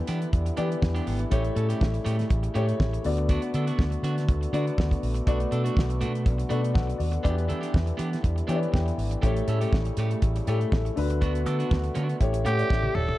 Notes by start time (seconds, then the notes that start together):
Already playing: D3 E3 G3 B3 E4 G4 D5
0.07 E3 B3 D4 G4, closed hi-hat
0.21 muted clean electric guitar stroke, closed hi-hat
0.33 E2, muted clean electric guitar stroke, kick, closed hi-hat
0.46 muted clean electric guitar stroke, closed hi-hat
0.57 E3 B3 D4 G4 D5, closed hi-hat
0.70 muted clean electric guitar stroke, closed hi-hat
0.82 E2, muted clean electric guitar stroke, kick, snare
0.95 B3 D4 G4, closed hi-hat
1.07 G#1 B3 D4 G4, open hi-hat
1.19 muted clean electric guitar stroke, closed hi-hat
1.30 A1 C#3 A3 C#4 E4 G4 C#5, kick, closed hi-hat
1.44 muted clean electric guitar stroke, closed hi-hat
1.55 A2 A3 C#4 A4, closed hi-hat
1.69 A3 C#4 G4, closed hi-hat
1.81 A1, kick, snare
1.94 muted clean electric guitar stroke, closed hi-hat
2.05 A2 A3 C#4 G4, closed hi-hat
2.18 muted clean electric guitar stroke, snare, closed hi-hat
2.29 A1, muted clean electric guitar stroke, kick, closed hi-hat
2.43 muted clean electric guitar stroke, closed hi-hat
2.54 A2 A3 C#4 E4 G4 C#5, closed hi-hat
2.68 muted clean electric guitar stroke, closed hi-hat
2.80 A1, muted clean electric guitar stroke, kick, snare
2.93 muted clean electric guitar stroke, closed hi-hat
3.03 D2 D3 B3 F#4 D5, open hi-hat
3.17 muted clean electric guitar stroke, closed hi-hat
3.29 B3 D4 F#4, kick, closed hi-hat
3.42 muted clean electric guitar stroke, closed hi-hat
3.54 D3 B3 D4 A4, closed hi-hat
3.67 B3 D4 F#4, closed hi-hat
3.79 D2, kick, snare
3.91 muted clean electric guitar stroke, closed hi-hat
4.03 D3 B3 D4 F#4, closed hi-hat
4.17 muted clean electric guitar stroke, snare, closed hi-hat
4.29 D2, muted clean electric guitar stroke, kick, closed hi-hat
4.41 muted clean electric guitar stroke, closed hi-hat
4.53 D3 B3 D4 F#4 D5, closed hi-hat
4.67 muted clean electric guitar stroke, closed hi-hat
4.78 D2, muted clean electric guitar stroke, kick, snare
4.91 muted clean electric guitar stroke, kick, closed hi-hat
5.03 A#1, open hi-hat
5.14 muted clean electric guitar stroke, closed hi-hat
5.26 B1 B2 D3 A3 B3 D4 F#4 A4 D5, kick, closed hi-hat
5.40 muted clean electric guitar stroke, closed hi-hat
5.51 B2 A3 D4 A4, closed hi-hat
5.64 A3 D4 F#4, closed hi-hat
5.77 B1, kick, snare
5.90 muted clean electric guitar stroke, closed hi-hat
6.01 B2 A3 D4 F#4, closed hi-hat
6.14 muted clean electric guitar stroke, closed hi-hat
6.25 B1, muted clean electric guitar stroke, kick, closed hi-hat
6.38 muted clean electric guitar stroke, closed hi-hat
6.49 B2 A3 B3 D4 F#4 A4 D5, closed hi-hat
6.62 muted clean electric guitar stroke, closed hi-hat
6.74 B1 A4 F#5, muted clean electric guitar stroke, kick, snare
6.87 muted clean electric guitar stroke, closed hi-hat
6.98 D#2 F#4 D5, open hi-hat
7.12 muted clean electric guitar stroke, closed hi-hat
7.23 E2 E3 G3 B3 D4 E4 F#4 G4 D5, kick, closed hi-hat
7.30 G4
7.37 muted clean electric guitar stroke, closed hi-hat
7.48 E3 B3 D4 A4, closed hi-hat
7.61 B3 D4 G4, closed hi-hat
7.74 E2, kick, snare
7.86 muted clean electric guitar stroke, closed hi-hat
7.97 E3 B3 D4 G4, closed hi-hat
8.11 muted clean electric guitar stroke, snare, closed hi-hat
8.22 E2, muted clean electric guitar stroke, kick, closed hi-hat
8.36 muted clean electric guitar stroke, closed hi-hat
8.47 E3 B3 D4 G4 C#5, closed hi-hat
8.56 D5
8.61 muted clean electric guitar stroke, closed hi-hat
8.72 E2 G5, muted clean electric guitar stroke, kick, snare
8.86 muted clean electric guitar stroke, closed hi-hat
8.98 G#1, open hi-hat
9.11 muted clean electric guitar stroke, closed hi-hat
9.22 A1 C#3 G3 A3 C#4 E4 G4 C#5, kick, closed hi-hat
9.36 muted clean electric guitar stroke, closed hi-hat
9.48 A2 A3 C#4 A4, closed hi-hat
9.61 A3 C#4 G4, closed hi-hat
9.73 A1, kick, snare
9.85 muted clean electric guitar stroke, closed hi-hat
9.97 A2 A3 C#4 G4, closed hi-hat
10.11 muted clean electric guitar stroke, closed hi-hat
10.22 A1, muted clean electric guitar stroke, kick, closed hi-hat
10.36 muted clean electric guitar stroke, closed hi-hat
10.47 A2 A3 C#4 E4 G4 A4, closed hi-hat
10.61 muted clean electric guitar stroke, closed hi-hat
10.72 A1, muted clean electric guitar stroke, kick, snare
10.85 muted clean electric guitar stroke, closed hi-hat
10.96 D2 D3 B3 D4 F#4 B4, open hi-hat
11.10 muted clean electric guitar stroke, closed hi-hat
11.21 B3 D4 F#4, kick, closed hi-hat
11.34 muted clean electric guitar stroke, closed hi-hat
11.46 D3 B3 D4 A4, closed hi-hat
11.59 B3 D4 F#4, closed hi-hat
11.71 D2, kick, snare
11.84 muted clean electric guitar stroke, closed hi-hat
11.95 D3 B3 D4 F#4, closed hi-hat
12.09 muted clean electric guitar stroke, closed hi-hat
12.20 A1 E3 A3 C#4 E4 G4 C#5, kick, closed hi-hat
12.33 muted clean electric guitar stroke, closed hi-hat
12.45 A2 A3 C#4 E4 G4 C#5 F#5, closed hi-hat
12.58 D5, muted clean electric guitar stroke, closed hi-hat
12.70 A1 G4 E5, muted clean electric guitar stroke, kick, snare
12.83 muted clean electric guitar stroke, high tom
12.95 D#1 E4 A4 C#5, mid tom
13.08 muted clean electric guitar stroke, floor tom